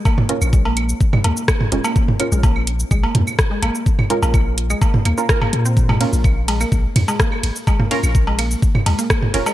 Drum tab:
RD |----------------|----------------|----------------|--x---x---x---x-|
HH |--x---x---x---x-|--x---x---x---x-|--x---x---x---x-|--x---x---x---x-|
SH |x--xx--xx--xx--x|x--xx--xx--xx--x|x--xx--xx--xx--x|x--xx--xx--xx--x|
CB |x----x----x----x|----x----x----x-|---x----x----x--|-x----x----x----|
CL |x--x--x--x--x--x|--x--x--x--x--x-|-x--x--x--x--x--|-x--x--x--x--x--|
SD |------------r---|------------r---|------------r---|------------r---|
T2 |-o-------o---o--|-o--------o-----|-o-------o---o--|-o--------o-----|
BD |o---o---o---o---|o---o---o---o---|o---o---o---o---|o---o---o---o---|

RD |--x---x---xx--x-|
HH |--x---x---x---x-|
SH |x--xx--xx--xx--x|
CB |x----x----x----x|
CL |x--x--x--x--x--x|
SD |------------r---|
T2 |-o-------o---o--|
BD |o---o---o---o---|